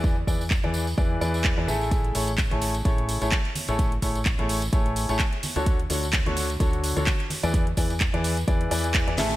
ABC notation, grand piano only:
X:1
M:4/4
L:1/16
Q:"Swing 16ths" 1/4=128
K:A
V:1 name="Grand piano"
[E,EGBd] z [E,EGBd] z2 [E,EGBd]2 z [E,EGBd]2 [E,EGBd]3 [E,EGBd] [A,EGAe]2- | [A,EGAe]2 [A,EGAc] z2 [A,EGAc]2 z [A,EGAc]3 [A,EGAc] z3 [A,EGAc]- | [A,EGAc] z [A,EGAc] z2 [A,EGAc]2 z [A,EGAc]3 [A,EGAc] z3 [D,DFAc]- | [D,DFAc] z [D,DFAc] z2 [D,DFAc]2 z [D,DFAc]3 [D,DFAc] z3 [E,EGBd]- |
[E,EGBd] z [E,EGBd] z2 [E,EGBd]2 z [E,EGBd]2 [E,EGBd]3 [E,EGBd] [A,EGAe]2 |]